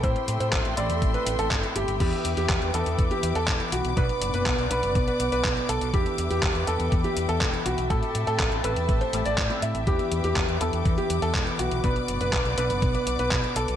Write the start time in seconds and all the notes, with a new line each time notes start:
Already playing: G5
0.03 A2 A3 C4 E4 G4 A4 C5 E5 C6, kick, closed hi-hat
0.16 closed hi-hat
0.28 A2, closed hi-hat
0.40 A2 C5, closed hi-hat
0.53 A1, kick, clap, closed hi-hat
0.65 A1, closed hi-hat
0.77 A1 A2 A3 C4 E4 G4 D5, closed hi-hat
0.90 E2, closed hi-hat
1.02 A1, kick, closed hi-hat
1.14 B4, closed hi-hat
1.27 A1, closed hi-hat
1.39 A1 A4, closed hi-hat
1.51 G1, kick, clap, closed hi-hat
1.63 closed hi-hat
1.76 G1 G4, closed hi-hat
1.88 G1, closed hi-hat
2.00 E2 E3 B3 D4 E4 G4 B4 D6, kick, closed hi-hat, crash
2.13 closed hi-hat
2.25 E2, closed hi-hat
2.37 E2 G4, closed hi-hat
2.49 E2, kick, clap, closed hi-hat
2.62 E2, closed hi-hat
2.74 E2 E3 B3 D4 E4 G4 A4, closed hi-hat
2.86 E2, closed hi-hat
2.99 E2, kick, closed hi-hat
3.11 G4, closed hi-hat
3.23 E2, closed hi-hat
3.35 E2 A4, closed hi-hat
3.48 E1, kick, clap, closed hi-hat
3.60 closed hi-hat
3.72 B1 F#4, closed hi-hat
3.85 B1, closed hi-hat
3.96 B1 B2 B3 D4 F#4 B4 D5 F#5, kick, closed hi-hat
4.09 closed hi-hat
4.22 F#1, closed hi-hat
4.34 F#1 B4, closed hi-hat
4.46 B1, kick, clap, closed hi-hat
4.58 B1, closed hi-hat
4.70 B1 B2 B3 D4 F#4 B4, closed hi-hat
4.83 F#1, closed hi-hat
4.95 B1, kick, closed hi-hat
5.08 B4, closed hi-hat
5.20 B1, closed hi-hat
5.32 B1 B4, closed hi-hat
5.44 B1, kick, clap, closed hi-hat
5.57 closed hi-hat
5.69 B1 A4, closed hi-hat
5.81 B1, closed hi-hat
5.93 E2 E3 B3 D4 E4 G4 B4 E5 G5, kick, closed hi-hat
6.06 closed hi-hat
6.18 E2, closed hi-hat
6.30 E2 G4, closed hi-hat
6.43 E2, kick, clap, closed hi-hat
6.55 E2, closed hi-hat
6.67 E2 E3 B3 D4 E4 G4 A4, closed hi-hat
6.80 E2, closed hi-hat
6.92 E2, kick, closed hi-hat
7.04 G4, closed hi-hat
7.17 E2, closed hi-hat
7.29 E2 A4, closed hi-hat
7.41 E1, kick, clap, closed hi-hat
7.54 closed hi-hat
7.66 B1 F#4, closed hi-hat
7.78 B1, closed hi-hat
7.90 A2 A3 C4 E4 G4 A4 A5, kick, closed hi-hat
8.03 closed hi-hat
8.15 A2, closed hi-hat
8.27 A2 A4, closed hi-hat
8.39 A1, kick, clap, closed hi-hat
8.52 A1, closed hi-hat
8.64 A1 A2 A3 C4 E4 G4 B4, closed hi-hat
8.76 E2, closed hi-hat
8.89 A1, kick, closed hi-hat
9.01 C5, closed hi-hat
9.13 A1 A2 A3 C4 E4 G4, closed hi-hat
9.26 A1 D5, closed hi-hat
9.38 A2, kick, clap, closed hi-hat
9.50 A2 A3 C4 E4 G4, closed hi-hat
9.62 A2 E5, closed hi-hat
9.75 A1, closed hi-hat
9.87 E2 E3 B3 D4 E4 G4 B4 D6, kick, closed hi-hat
9.99 closed hi-hat
10.12 E2, closed hi-hat
10.24 E2 G4, closed hi-hat
10.36 E2, kick, clap, closed hi-hat
10.49 E2, closed hi-hat
10.61 E2 E3 B3 D4 E4 G4 A4, closed hi-hat
10.73 E2, closed hi-hat
10.85 E2, kick, closed hi-hat
10.98 G4, closed hi-hat
11.10 E2, closed hi-hat
11.22 E2 A4, closed hi-hat
11.35 E1, kick, clap, closed hi-hat
11.47 closed hi-hat
11.59 B1 F#4, closed hi-hat
11.71 B1, closed hi-hat
11.83 B1 B2 B3 D4 F#4 B4 D5 F#5, kick, closed hi-hat
11.96 closed hi-hat
12.08 F#1, closed hi-hat
12.21 F#1 B4, closed hi-hat
12.33 B1, kick, clap, closed hi-hat
12.45 B1, closed hi-hat
12.57 B1 B2 B3 D4 F#4 B4, closed hi-hat
12.70 F#1, closed hi-hat
12.82 B1, kick, closed hi-hat
12.95 B4, closed hi-hat
13.07 B1, closed hi-hat
13.19 B1 B4, closed hi-hat
13.31 B1, kick, clap, closed hi-hat
13.44 closed hi-hat
13.56 B1 A4, closed hi-hat
13.68 B1, closed hi-hat